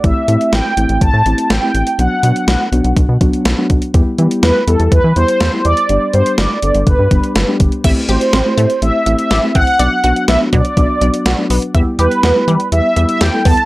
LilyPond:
<<
  \new Staff \with { instrumentName = "Analog polysynth" } { \time 4/4 \key a \dorian \tempo 4 = 123 e''4 g''4 a''4 g''4 | fis''2 r2 | r4 b'8 a'8 b'8 c''4 d''8~ | d''8 c''8 d''4 b'4. r8 |
r8 c''4. e''8. e''8. fis''8~ | fis''4 e''8 d''2 r8 | r8 b'4. e''8. e''16 g''8 a''8 | }
  \new Staff \with { instrumentName = "Synth arpeggio sound" } { \time 4/4 \key a \dorian r1 | r1 | r1 | r1 |
e''8 g'8 c'8 a8 r8 e''8 g'8 c'8 | d''8 fis'8 b8 fis8 r8 d''8 fis'8 b8 | e''8 g'8 b8 g8 r8 e''8 g'8 b8 | }
  \new Staff \with { instrumentName = "Synth keys" } { \time 4/4 \key a \dorian <a c' e' g'>16 r16 <a c' e' g'>8. r16 <a c' e' g'>8. r16 <a c' e' g'>8 r16 <a c' e' g'>8 r16 | <fis b d' fis'>16 r16 <fis b d' fis'>8. r16 <fis b d' fis'>8. r16 <fis b d' fis'>8 r16 <fis b d' fis'>8 r16 | <g b e' g'>16 r16 <g b e' g'>8. r16 <g b e' g'>8. r16 <g b e' g'>8 r16 <g b e' g'>8 r16 | <g b d' g'>16 r16 <g b d' g'>8. r16 <g b d' a'>8. r16 <g b d' g'>8 r16 <g b d' g'>8 r16 |
<a c' e' g'>16 r16 <a c' e' fis'>8 r16 <a c' e' g'>8 r16 <a c' e' g'>16 r16 <a c' e' g'>8 r16 <a c' e' g'>8 r16 | <fis b d' fis'>16 r16 <fis b d' fis'>8 r16 <fis b d' fis'>8 r16 <fis b d' fis'>16 r16 <fis b d' fis'>8 r16 <fis b d' fis'>8 r16 | <g b e' g'>16 r16 <g b e' g'>8 r16 <g b e' g'>8 r16 <g b e' g'>16 r16 <g b e' g'>8 r16 <g b e' a'>8 r16 | }
  \new Staff \with { instrumentName = "Analog synth bass" } { \clef bass \time 4/4 \key a \dorian a,,16 r16 a,16 r16 a,,16 r16 a,,16 a,,16 a,,16 a,16 a,,16 r16 a,,16 r16 a,,16 r16 | b,,16 r16 b,16 r16 b,,16 r16 b,,16 b,,16 b,,16 b,16 b,,16 r16 b,,16 r16 b,,16 r16 | e,16 r16 e16 r16 e,16 r16 e,16 e,16 e,16 e16 e,16 r16 e,16 r16 e,16 r16 | g,,16 r16 g,16 r16 g,,16 r16 g,,16 g,,16 g,,16 g,16 g,,16 r16 g,,16 r16 g,,16 r16 |
a,,16 r16 a,,16 r16 a,,16 r16 a,16 r16 a,,16 r16 a,,16 r16 a,,16 r16 a,,16 r16 | b,,16 r16 b,,16 r16 b,,16 r16 b,16 r16 b,,16 r16 b,,16 r16 b,,16 r16 b,,16 r16 | e,16 r16 e,16 r16 e,16 r16 e16 r16 e,16 r16 e,16 r16 e,16 r16 e,16 r16 | }
  \new DrumStaff \with { instrumentName = "Drums" } \drummode { \time 4/4 <hh bd>8 hh16 hh16 <hh sn>8 hh16 hh16 <hh bd>8 hh16 hh16 <hh sn>8 hh16 hh16 | hh8 hh16 hh16 <hh sn>8 hh16 hh16 <hh bd>8 <hh bd>16 hh16 <hh sn>8 <hh bd>16 hh16 | <hh bd>8 hh16 hh16 <hh sn>8 hh16 hh16 <hh bd>8 hh16 hh16 <hh sn>8 hh16 hh16 | hh8 hh16 hh16 <hh sn>8 hh16 hh16 <hh bd>8 <hh bd>16 hh16 <hh sn>8 <hh bd>16 hh16 |
<cymc hh bd>8 hh16 hh16 <hh sn>8 hh16 hh16 hh8 hh16 hh16 <hh sn>8 <hh bd>16 hh16 | hh8 hh16 hh16 <hh sn>8 <hh bd>16 hh16 <hh bd>8 hh16 hh16 <hh sn>8 hho16 hh16 | <hh bd>8 hh16 hh16 <hh sn>8 hh16 hh16 hh8 hh16 hh16 <hh sn>8 <hho bd>16 hh16 | }
>>